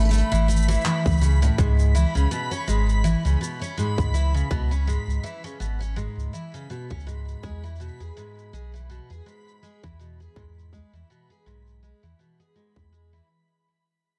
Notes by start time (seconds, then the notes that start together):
Already playing: G#1 B5
0.01 closed hi-hat
0.05 closed hi-hat
0.09 A3, closed hi-hat
0.13 closed hi-hat, shaker
0.18 closed hi-hat
0.32 G#1 E3, shaker
0.48 A3, closed hi-hat, shaker
0.56 shaker
0.62 shaker
0.68 E3, shaker
0.74 shaker
0.81 E3, shaker
0.85 clap, closed hi-hat, shaker
1.06 C#2, kick, shaker
1.11 shaker
1.18 C#3, shaker
1.23 closed hi-hat, shaker
1.35 shaker
1.42 A2, closed hi-hat, shaker
1.58 C#2 G#2, kick, shaker
1.79 shaker
1.95 E3, shaker
2.15 C#2 C#3, shaker
2.31 B2, shaker
2.51 C#4, shaker
2.68 G#1 G#2, shaker
2.89 shaker
3.04 E3, shaker
3.25 C#2 C#3, shaker
3.41 B2, shaker
3.62 C#4, shaker
3.77 G#2, shaker
3.98 C#2, kick, shaker
4.14 E3, shaker
4.34 C#3, shaker
4.51 C#2 B2, kick, shaker
4.71 C#4, shaker
4.87 G#2, shaker
5.08 C#2, shaker
5.23 E3, shaker
5.44 C#3, shaker
5.60 G#1 B2, shaker
5.80 C#4, shaker
5.96 G#2, shaker
6.17 C#2, shaker
6.33 E3, shaker
6.54 C#3, shaker
6.70 B2, shaker
6.90 C#2 C#4, kick
7.00 shaker
7.07 G#2, shaker
7.28 shaker
7.43 E2 G#3, kick, shaker
7.64 E3, shaker
7.76 shaker
7.80 B2, shaker
7.88 shaker
8.00 E2 G#4, shaker
8.17 G#2, shaker
8.39 shaker
8.53 B1 G#3, shaker
8.74 E3, shaker
8.90 B2, shaker
9.10 E2 G#4, shaker
9.26 G#2, shaker
9.48 shaker
9.63 G#3, shaker
9.83 E2 E3, kick, shaker
9.99 B2, shaker
10.20 G#4, shaker
10.36 E2 G#2, kick, shaker
10.59 shaker
10.73 G#3, kick, shaker
10.93 E2 E3, shaker
11.10 B2, shaker
11.30 G#4, shaker
11.46 B1 G#2, shaker
11.67 shaker
11.83 G#3, shaker
12.03 E2 E3, shaker
12.19 B2, shaker
12.40 G#4, shaker
12.56 G#2, shaker
12.76 E2, kick, shaker
12.92 G#3, shaker
13.13 E3, shaker